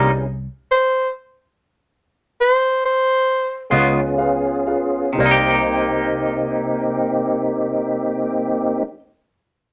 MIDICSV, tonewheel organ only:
0, 0, Header, 1, 2, 480
1, 0, Start_track
1, 0, Key_signature, -3, "minor"
1, 0, Tempo, 839161
1, 1352, Tempo, 913242
1, 2312, Tempo, 1001669
1, 2783, Time_signature, 12, 3, 24, 8
1, 4966, End_track
2, 0, Start_track
2, 0, Title_t, "Tonewheel organ"
2, 0, Program_c, 0, 16
2, 0, Note_on_c, 0, 59, 63
2, 0, Note_on_c, 0, 61, 61
2, 0, Note_on_c, 0, 64, 60
2, 0, Note_on_c, 0, 68, 64
2, 149, Note_off_c, 0, 64, 0
2, 150, Note_off_c, 0, 59, 0
2, 150, Note_off_c, 0, 61, 0
2, 151, Note_off_c, 0, 68, 0
2, 2054, Note_on_c, 0, 59, 63
2, 2055, Note_on_c, 0, 68, 65
2, 2059, Note_on_c, 0, 65, 66
2, 2061, Note_on_c, 0, 61, 64
2, 2771, Note_off_c, 0, 59, 0
2, 2771, Note_off_c, 0, 68, 0
2, 2773, Note_off_c, 0, 65, 0
2, 2774, Note_off_c, 0, 61, 0
2, 2787, Note_on_c, 0, 58, 65
2, 2789, Note_on_c, 0, 60, 65
2, 2790, Note_on_c, 0, 67, 64
2, 2791, Note_on_c, 0, 63, 64
2, 4532, Note_off_c, 0, 58, 0
2, 4534, Note_off_c, 0, 60, 0
2, 4534, Note_off_c, 0, 67, 0
2, 4536, Note_off_c, 0, 63, 0
2, 4966, End_track
0, 0, End_of_file